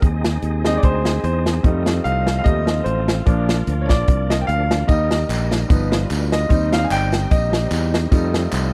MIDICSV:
0, 0, Header, 1, 6, 480
1, 0, Start_track
1, 0, Tempo, 404585
1, 28, Time_signature, 4, 2, 24, 8
1, 10358, End_track
2, 0, Start_track
2, 0, Title_t, "Tonewheel organ"
2, 0, Program_c, 0, 16
2, 0, Note_on_c, 0, 75, 63
2, 18, Note_on_c, 0, 63, 68
2, 23, Note_on_c, 0, 60, 53
2, 24, Note_on_c, 0, 68, 49
2, 1927, Note_off_c, 0, 63, 0
2, 1930, Note_off_c, 0, 68, 0
2, 1951, Note_on_c, 0, 53, 62
2, 1955, Note_on_c, 0, 69, 58
2, 3826, Note_off_c, 0, 75, 0
2, 3833, Note_off_c, 0, 60, 0
2, 3857, Note_off_c, 0, 69, 0
2, 3872, Note_on_c, 0, 70, 52
2, 3873, Note_on_c, 0, 62, 52
2, 3876, Note_on_c, 0, 74, 67
2, 5757, Note_off_c, 0, 53, 0
2, 5775, Note_off_c, 0, 70, 0
2, 5776, Note_off_c, 0, 62, 0
2, 5778, Note_off_c, 0, 74, 0
2, 5799, Note_on_c, 0, 63, 52
2, 5800, Note_on_c, 0, 75, 67
2, 5802, Note_on_c, 0, 55, 64
2, 5803, Note_on_c, 0, 70, 63
2, 6747, Note_off_c, 0, 63, 0
2, 6750, Note_off_c, 0, 70, 0
2, 6765, Note_on_c, 0, 65, 53
2, 6765, Note_on_c, 0, 71, 55
2, 7709, Note_off_c, 0, 65, 0
2, 7709, Note_off_c, 0, 71, 0
2, 7715, Note_on_c, 0, 63, 58
2, 7721, Note_on_c, 0, 72, 57
2, 9594, Note_off_c, 0, 55, 0
2, 9611, Note_off_c, 0, 63, 0
2, 9613, Note_off_c, 0, 72, 0
2, 9626, Note_on_c, 0, 53, 63
2, 9629, Note_on_c, 0, 60, 63
2, 9630, Note_on_c, 0, 69, 53
2, 10358, Note_off_c, 0, 53, 0
2, 10358, Note_off_c, 0, 60, 0
2, 10358, Note_off_c, 0, 69, 0
2, 10358, Note_off_c, 0, 75, 0
2, 10358, End_track
3, 0, Start_track
3, 0, Title_t, "Grand piano"
3, 0, Program_c, 1, 0
3, 766, Note_on_c, 1, 56, 50
3, 775, Note_on_c, 1, 60, 47
3, 779, Note_on_c, 1, 63, 60
3, 794, Note_on_c, 1, 75, 91
3, 913, Note_on_c, 1, 74, 74
3, 928, Note_off_c, 1, 75, 0
3, 989, Note_off_c, 1, 74, 0
3, 999, Note_on_c, 1, 72, 91
3, 1431, Note_off_c, 1, 56, 0
3, 1436, Note_off_c, 1, 60, 0
3, 1438, Note_off_c, 1, 63, 0
3, 1456, Note_off_c, 1, 72, 0
3, 1474, Note_on_c, 1, 72, 71
3, 1919, Note_off_c, 1, 72, 0
3, 1935, Note_on_c, 1, 55, 52
3, 1945, Note_on_c, 1, 57, 55
3, 1952, Note_on_c, 1, 63, 61
3, 2423, Note_on_c, 1, 77, 99
3, 2812, Note_off_c, 1, 77, 0
3, 2830, Note_on_c, 1, 77, 76
3, 2882, Note_off_c, 1, 55, 0
3, 2889, Note_off_c, 1, 57, 0
3, 2893, Note_off_c, 1, 63, 0
3, 2894, Note_on_c, 1, 75, 100
3, 2900, Note_on_c, 1, 55, 46
3, 2907, Note_on_c, 1, 57, 44
3, 2909, Note_off_c, 1, 77, 0
3, 2911, Note_on_c, 1, 63, 49
3, 3146, Note_off_c, 1, 55, 0
3, 3150, Note_off_c, 1, 57, 0
3, 3152, Note_off_c, 1, 63, 0
3, 3350, Note_off_c, 1, 75, 0
3, 3370, Note_on_c, 1, 72, 76
3, 3828, Note_off_c, 1, 72, 0
3, 3864, Note_on_c, 1, 53, 58
3, 3870, Note_on_c, 1, 58, 51
3, 3878, Note_on_c, 1, 62, 62
3, 4204, Note_off_c, 1, 53, 0
3, 4207, Note_off_c, 1, 58, 0
3, 4211, Note_off_c, 1, 62, 0
3, 4526, Note_on_c, 1, 73, 60
3, 4615, Note_on_c, 1, 74, 94
3, 4620, Note_off_c, 1, 73, 0
3, 5065, Note_off_c, 1, 74, 0
3, 5102, Note_on_c, 1, 75, 80
3, 5162, Note_off_c, 1, 75, 0
3, 5235, Note_on_c, 1, 79, 56
3, 5303, Note_on_c, 1, 77, 101
3, 5313, Note_off_c, 1, 79, 0
3, 5781, Note_on_c, 1, 55, 57
3, 5789, Note_on_c, 1, 58, 50
3, 5791, Note_on_c, 1, 75, 92
3, 5795, Note_on_c, 1, 63, 62
3, 5804, Note_off_c, 1, 77, 0
3, 6122, Note_off_c, 1, 55, 0
3, 6126, Note_off_c, 1, 58, 0
3, 6129, Note_off_c, 1, 63, 0
3, 6746, Note_on_c, 1, 53, 48
3, 6751, Note_on_c, 1, 59, 52
3, 6758, Note_on_c, 1, 63, 61
3, 6972, Note_off_c, 1, 75, 0
3, 7084, Note_off_c, 1, 53, 0
3, 7087, Note_off_c, 1, 59, 0
3, 7091, Note_off_c, 1, 63, 0
3, 7509, Note_on_c, 1, 75, 91
3, 7700, Note_on_c, 1, 55, 53
3, 7707, Note_on_c, 1, 60, 55
3, 7713, Note_on_c, 1, 63, 59
3, 7951, Note_off_c, 1, 75, 0
3, 7983, Note_on_c, 1, 77, 99
3, 8119, Note_on_c, 1, 80, 65
3, 8124, Note_off_c, 1, 77, 0
3, 8194, Note_off_c, 1, 80, 0
3, 8205, Note_on_c, 1, 79, 104
3, 8674, Note_on_c, 1, 75, 82
3, 8692, Note_off_c, 1, 79, 0
3, 9575, Note_off_c, 1, 55, 0
3, 9578, Note_off_c, 1, 60, 0
3, 9581, Note_off_c, 1, 63, 0
3, 9625, Note_on_c, 1, 55, 59
3, 9630, Note_on_c, 1, 57, 52
3, 9639, Note_on_c, 1, 63, 64
3, 9849, Note_off_c, 1, 75, 0
3, 10358, Note_off_c, 1, 55, 0
3, 10358, Note_off_c, 1, 57, 0
3, 10358, Note_off_c, 1, 63, 0
3, 10358, End_track
4, 0, Start_track
4, 0, Title_t, "French horn section"
4, 0, Program_c, 2, 60
4, 0, Note_on_c, 2, 63, 64
4, 23, Note_on_c, 2, 60, 65
4, 23, Note_on_c, 2, 68, 86
4, 26, Note_on_c, 2, 56, 73
4, 1929, Note_off_c, 2, 60, 0
4, 1930, Note_off_c, 2, 68, 0
4, 1931, Note_off_c, 2, 56, 0
4, 1953, Note_on_c, 2, 57, 76
4, 1955, Note_on_c, 2, 65, 87
4, 1956, Note_on_c, 2, 60, 70
4, 3824, Note_off_c, 2, 63, 0
4, 3856, Note_off_c, 2, 57, 0
4, 3857, Note_off_c, 2, 60, 0
4, 3868, Note_on_c, 2, 58, 70
4, 3869, Note_on_c, 2, 53, 77
4, 3872, Note_on_c, 2, 62, 70
4, 5759, Note_off_c, 2, 65, 0
4, 5774, Note_off_c, 2, 53, 0
4, 5775, Note_off_c, 2, 62, 0
4, 5793, Note_on_c, 2, 55, 81
4, 5795, Note_on_c, 2, 67, 76
4, 5801, Note_on_c, 2, 63, 68
4, 6724, Note_off_c, 2, 58, 0
4, 6746, Note_off_c, 2, 67, 0
4, 6760, Note_on_c, 2, 59, 68
4, 6765, Note_on_c, 2, 65, 73
4, 7707, Note_off_c, 2, 59, 0
4, 7709, Note_off_c, 2, 65, 0
4, 7719, Note_on_c, 2, 60, 61
4, 7721, Note_on_c, 2, 67, 85
4, 9590, Note_off_c, 2, 55, 0
4, 9613, Note_off_c, 2, 67, 0
4, 9619, Note_on_c, 2, 57, 78
4, 9626, Note_on_c, 2, 65, 88
4, 10358, Note_off_c, 2, 57, 0
4, 10358, Note_off_c, 2, 60, 0
4, 10358, Note_off_c, 2, 63, 0
4, 10358, Note_off_c, 2, 65, 0
4, 10358, End_track
5, 0, Start_track
5, 0, Title_t, "Fingered electric bass"
5, 0, Program_c, 3, 33
5, 29, Note_on_c, 3, 39, 99
5, 437, Note_off_c, 3, 39, 0
5, 505, Note_on_c, 3, 39, 83
5, 915, Note_off_c, 3, 39, 0
5, 990, Note_on_c, 3, 38, 94
5, 1398, Note_off_c, 3, 38, 0
5, 1466, Note_on_c, 3, 40, 95
5, 1877, Note_off_c, 3, 40, 0
5, 1949, Note_on_c, 3, 41, 89
5, 2359, Note_off_c, 3, 41, 0
5, 2433, Note_on_c, 3, 36, 83
5, 2841, Note_off_c, 3, 36, 0
5, 2918, Note_on_c, 3, 39, 92
5, 3325, Note_off_c, 3, 39, 0
5, 3391, Note_on_c, 3, 33, 93
5, 3801, Note_off_c, 3, 33, 0
5, 3877, Note_on_c, 3, 34, 88
5, 4284, Note_off_c, 3, 34, 0
5, 4358, Note_on_c, 3, 38, 95
5, 4629, Note_off_c, 3, 38, 0
5, 4629, Note_on_c, 3, 34, 86
5, 4807, Note_off_c, 3, 34, 0
5, 4843, Note_on_c, 3, 36, 80
5, 5248, Note_off_c, 3, 36, 0
5, 5319, Note_on_c, 3, 38, 89
5, 5725, Note_off_c, 3, 38, 0
5, 5800, Note_on_c, 3, 39, 104
5, 6206, Note_off_c, 3, 39, 0
5, 6277, Note_on_c, 3, 34, 84
5, 6684, Note_off_c, 3, 34, 0
5, 6766, Note_on_c, 3, 31, 101
5, 7169, Note_off_c, 3, 31, 0
5, 7244, Note_on_c, 3, 38, 86
5, 7648, Note_off_c, 3, 38, 0
5, 7719, Note_on_c, 3, 39, 100
5, 8124, Note_off_c, 3, 39, 0
5, 8194, Note_on_c, 3, 31, 84
5, 8601, Note_off_c, 3, 31, 0
5, 8681, Note_on_c, 3, 34, 83
5, 9084, Note_off_c, 3, 34, 0
5, 9147, Note_on_c, 3, 40, 86
5, 9555, Note_off_c, 3, 40, 0
5, 9632, Note_on_c, 3, 41, 113
5, 10037, Note_off_c, 3, 41, 0
5, 10114, Note_on_c, 3, 36, 94
5, 10358, Note_off_c, 3, 36, 0
5, 10358, End_track
6, 0, Start_track
6, 0, Title_t, "Drums"
6, 27, Note_on_c, 9, 36, 94
6, 29, Note_on_c, 9, 42, 74
6, 146, Note_off_c, 9, 36, 0
6, 148, Note_off_c, 9, 42, 0
6, 290, Note_on_c, 9, 38, 106
6, 292, Note_on_c, 9, 42, 72
6, 409, Note_off_c, 9, 38, 0
6, 411, Note_off_c, 9, 42, 0
6, 503, Note_on_c, 9, 42, 84
6, 622, Note_off_c, 9, 42, 0
6, 766, Note_on_c, 9, 38, 82
6, 776, Note_on_c, 9, 42, 58
6, 885, Note_off_c, 9, 38, 0
6, 895, Note_off_c, 9, 42, 0
6, 982, Note_on_c, 9, 42, 81
6, 988, Note_on_c, 9, 36, 101
6, 1100, Note_off_c, 9, 42, 0
6, 1107, Note_off_c, 9, 36, 0
6, 1247, Note_on_c, 9, 38, 109
6, 1258, Note_on_c, 9, 42, 58
6, 1366, Note_off_c, 9, 38, 0
6, 1377, Note_off_c, 9, 42, 0
6, 1470, Note_on_c, 9, 42, 72
6, 1589, Note_off_c, 9, 42, 0
6, 1734, Note_on_c, 9, 38, 91
6, 1738, Note_on_c, 9, 42, 73
6, 1852, Note_off_c, 9, 38, 0
6, 1857, Note_off_c, 9, 42, 0
6, 1948, Note_on_c, 9, 36, 102
6, 1949, Note_on_c, 9, 42, 66
6, 2067, Note_off_c, 9, 36, 0
6, 2068, Note_off_c, 9, 42, 0
6, 2208, Note_on_c, 9, 38, 108
6, 2209, Note_on_c, 9, 42, 67
6, 2327, Note_off_c, 9, 38, 0
6, 2328, Note_off_c, 9, 42, 0
6, 2435, Note_on_c, 9, 42, 82
6, 2553, Note_off_c, 9, 42, 0
6, 2690, Note_on_c, 9, 38, 89
6, 2700, Note_on_c, 9, 42, 59
6, 2809, Note_off_c, 9, 38, 0
6, 2819, Note_off_c, 9, 42, 0
6, 2915, Note_on_c, 9, 42, 89
6, 2916, Note_on_c, 9, 36, 100
6, 3033, Note_off_c, 9, 42, 0
6, 3034, Note_off_c, 9, 36, 0
6, 3170, Note_on_c, 9, 38, 99
6, 3181, Note_on_c, 9, 42, 57
6, 3288, Note_off_c, 9, 38, 0
6, 3299, Note_off_c, 9, 42, 0
6, 3390, Note_on_c, 9, 42, 83
6, 3509, Note_off_c, 9, 42, 0
6, 3657, Note_on_c, 9, 38, 103
6, 3662, Note_on_c, 9, 42, 71
6, 3776, Note_off_c, 9, 38, 0
6, 3780, Note_off_c, 9, 42, 0
6, 3873, Note_on_c, 9, 42, 74
6, 3876, Note_on_c, 9, 36, 105
6, 3991, Note_off_c, 9, 42, 0
6, 3994, Note_off_c, 9, 36, 0
6, 4139, Note_on_c, 9, 38, 100
6, 4141, Note_on_c, 9, 42, 75
6, 4258, Note_off_c, 9, 38, 0
6, 4259, Note_off_c, 9, 42, 0
6, 4357, Note_on_c, 9, 42, 89
6, 4475, Note_off_c, 9, 42, 0
6, 4618, Note_on_c, 9, 38, 87
6, 4627, Note_on_c, 9, 36, 81
6, 4628, Note_on_c, 9, 42, 53
6, 4737, Note_off_c, 9, 38, 0
6, 4746, Note_off_c, 9, 36, 0
6, 4747, Note_off_c, 9, 42, 0
6, 4837, Note_on_c, 9, 42, 83
6, 4842, Note_on_c, 9, 36, 111
6, 4955, Note_off_c, 9, 42, 0
6, 4961, Note_off_c, 9, 36, 0
6, 5105, Note_on_c, 9, 38, 101
6, 5116, Note_on_c, 9, 42, 51
6, 5223, Note_off_c, 9, 38, 0
6, 5234, Note_off_c, 9, 42, 0
6, 5325, Note_on_c, 9, 42, 80
6, 5444, Note_off_c, 9, 42, 0
6, 5586, Note_on_c, 9, 38, 101
6, 5591, Note_on_c, 9, 42, 78
6, 5705, Note_off_c, 9, 38, 0
6, 5710, Note_off_c, 9, 42, 0
6, 5798, Note_on_c, 9, 54, 84
6, 5799, Note_on_c, 9, 36, 101
6, 5799, Note_on_c, 9, 42, 77
6, 5916, Note_off_c, 9, 54, 0
6, 5918, Note_off_c, 9, 36, 0
6, 5918, Note_off_c, 9, 42, 0
6, 6060, Note_on_c, 9, 38, 102
6, 6062, Note_on_c, 9, 42, 72
6, 6070, Note_on_c, 9, 54, 49
6, 6179, Note_off_c, 9, 38, 0
6, 6180, Note_off_c, 9, 42, 0
6, 6189, Note_off_c, 9, 54, 0
6, 6283, Note_on_c, 9, 42, 79
6, 6290, Note_on_c, 9, 39, 94
6, 6290, Note_on_c, 9, 54, 92
6, 6401, Note_off_c, 9, 42, 0
6, 6408, Note_off_c, 9, 39, 0
6, 6408, Note_off_c, 9, 54, 0
6, 6542, Note_on_c, 9, 38, 90
6, 6544, Note_on_c, 9, 54, 60
6, 6552, Note_on_c, 9, 42, 50
6, 6661, Note_off_c, 9, 38, 0
6, 6663, Note_off_c, 9, 54, 0
6, 6670, Note_off_c, 9, 42, 0
6, 6763, Note_on_c, 9, 36, 121
6, 6764, Note_on_c, 9, 42, 89
6, 6777, Note_on_c, 9, 54, 71
6, 6882, Note_off_c, 9, 36, 0
6, 6883, Note_off_c, 9, 42, 0
6, 6895, Note_off_c, 9, 54, 0
6, 7024, Note_on_c, 9, 38, 109
6, 7035, Note_on_c, 9, 42, 51
6, 7037, Note_on_c, 9, 54, 58
6, 7142, Note_off_c, 9, 38, 0
6, 7153, Note_off_c, 9, 42, 0
6, 7155, Note_off_c, 9, 54, 0
6, 7244, Note_on_c, 9, 39, 87
6, 7244, Note_on_c, 9, 42, 78
6, 7244, Note_on_c, 9, 54, 85
6, 7362, Note_off_c, 9, 42, 0
6, 7363, Note_off_c, 9, 39, 0
6, 7363, Note_off_c, 9, 54, 0
6, 7502, Note_on_c, 9, 38, 105
6, 7507, Note_on_c, 9, 42, 67
6, 7513, Note_on_c, 9, 54, 52
6, 7621, Note_off_c, 9, 38, 0
6, 7625, Note_off_c, 9, 42, 0
6, 7631, Note_off_c, 9, 54, 0
6, 7711, Note_on_c, 9, 42, 83
6, 7716, Note_on_c, 9, 36, 104
6, 7723, Note_on_c, 9, 54, 72
6, 7830, Note_off_c, 9, 42, 0
6, 7835, Note_off_c, 9, 36, 0
6, 7841, Note_off_c, 9, 54, 0
6, 7979, Note_on_c, 9, 38, 106
6, 7980, Note_on_c, 9, 42, 71
6, 7985, Note_on_c, 9, 54, 50
6, 8097, Note_off_c, 9, 38, 0
6, 8099, Note_off_c, 9, 42, 0
6, 8104, Note_off_c, 9, 54, 0
6, 8195, Note_on_c, 9, 42, 94
6, 8201, Note_on_c, 9, 39, 100
6, 8201, Note_on_c, 9, 54, 95
6, 8314, Note_off_c, 9, 42, 0
6, 8320, Note_off_c, 9, 39, 0
6, 8320, Note_off_c, 9, 54, 0
6, 8446, Note_on_c, 9, 54, 63
6, 8455, Note_on_c, 9, 38, 92
6, 8465, Note_on_c, 9, 42, 58
6, 8565, Note_off_c, 9, 54, 0
6, 8574, Note_off_c, 9, 38, 0
6, 8583, Note_off_c, 9, 42, 0
6, 8673, Note_on_c, 9, 42, 94
6, 8677, Note_on_c, 9, 36, 112
6, 8682, Note_on_c, 9, 54, 66
6, 8791, Note_off_c, 9, 42, 0
6, 8795, Note_off_c, 9, 36, 0
6, 8800, Note_off_c, 9, 54, 0
6, 8935, Note_on_c, 9, 38, 107
6, 8942, Note_on_c, 9, 54, 56
6, 8945, Note_on_c, 9, 42, 52
6, 9053, Note_off_c, 9, 38, 0
6, 9061, Note_off_c, 9, 54, 0
6, 9064, Note_off_c, 9, 42, 0
6, 9152, Note_on_c, 9, 39, 98
6, 9152, Note_on_c, 9, 54, 89
6, 9158, Note_on_c, 9, 42, 81
6, 9271, Note_off_c, 9, 39, 0
6, 9271, Note_off_c, 9, 54, 0
6, 9276, Note_off_c, 9, 42, 0
6, 9420, Note_on_c, 9, 38, 106
6, 9420, Note_on_c, 9, 54, 56
6, 9425, Note_on_c, 9, 42, 78
6, 9539, Note_off_c, 9, 38, 0
6, 9539, Note_off_c, 9, 54, 0
6, 9544, Note_off_c, 9, 42, 0
6, 9631, Note_on_c, 9, 54, 83
6, 9632, Note_on_c, 9, 36, 101
6, 9633, Note_on_c, 9, 42, 73
6, 9750, Note_off_c, 9, 54, 0
6, 9751, Note_off_c, 9, 36, 0
6, 9752, Note_off_c, 9, 42, 0
6, 9897, Note_on_c, 9, 38, 112
6, 9898, Note_on_c, 9, 42, 80
6, 9901, Note_on_c, 9, 54, 50
6, 10016, Note_off_c, 9, 38, 0
6, 10017, Note_off_c, 9, 42, 0
6, 10020, Note_off_c, 9, 54, 0
6, 10111, Note_on_c, 9, 42, 95
6, 10112, Note_on_c, 9, 39, 97
6, 10112, Note_on_c, 9, 54, 102
6, 10230, Note_off_c, 9, 39, 0
6, 10230, Note_off_c, 9, 42, 0
6, 10230, Note_off_c, 9, 54, 0
6, 10358, End_track
0, 0, End_of_file